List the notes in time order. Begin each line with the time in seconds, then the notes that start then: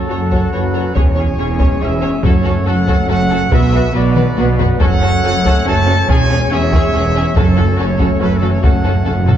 Already playing: F#3 C#4 F#4 A4 F#5
0.09 F#1 F#2 F#4 A4 C#5
0.31 F#4 A4 C#5, taiko
0.53 F#1 F#2 F#4 A4 B4 C#5
0.74 F#4 A4 C#5
0.94 E1 E2 G#3 C#4 E4 G#4 C#5 G#5, taiko
1.16 C#4 G#4 C#5
1.38 E1 E2 C#4 G#4 C#5
1.59 C#4 G#4 C#5, taiko
1.81 E1 E2 C#4 G#4 C#5 E5
2.01 C#4 G#4 C#5
2.23 F#1 F#2 A3 C#4 F#4 A4 C#5 F#5, taiko
2.43 C#4 F#4 A4
2.66 F#1 F#2 C#4 F#4 A4 F#5
2.87 C#4 F#4 A4, taiko
3.08 F#1 F#2 C#4 F#4 A4 F#5
3.29 C#4 F#4 A4
3.50 B1 B2 F#3 B3 F#4 B4 E5, taiko
3.72 B3 F#4 B4
3.93 B1 B2 B3 F#4 B4 D5
4.15 B3 F#4 B4, taiko mid
4.36 B1 B2 B3 F#4 B4, taiko high
4.59 B3 F#4 B4, taiko low
4.80 F#1 F#2 A3 C#4 F#4 A4 C#5 F#5, taiko
5.01 C#4 F#4 A4
5.24 F#1 F#2 C#4 F#4 A4
5.45 C#4 F#4 A4, taiko
5.65 F#1 F#2 C#4 F#4 A4 A5
5.85 C#4 F#4
5.90 A4
6.08 E1 E2 G#3 C#4 G#4 G#5, taiko
6.29 C#4 G#4
6.50 E1 E2 C#4 G#4 E5
6.72 C#4 G#4, taiko
6.93 E1 E2 C#4 G#4
7.15 C#4 G#4
7.35 F#1 F#2 A3 C#4 F#4 A4, taiko
7.57 C#4 F#4 A4
7.77 F#1 F#2 C#4 F#4 A4 C#5
7.99 C#4 F#4 A4, taiko
8.20 F#1 F#2 C#4 F#4 A4 B4
8.36 A4
8.42 C#4 F#4 A4, taiko mid
8.50 C#5
8.63 F#1 F#2 C#4 F#4 A4 F#5, taiko
8.72 F#2
8.79 F#2
8.84 F#2 C#4 F#4 A4
8.95 F#2
9.03 F#2 C#4 F#4 A4
9.07 F#1 F#2
9.18 F#2
9.25 F#2 C#4 F#4 A4, taiko low-mid
9.32 F#2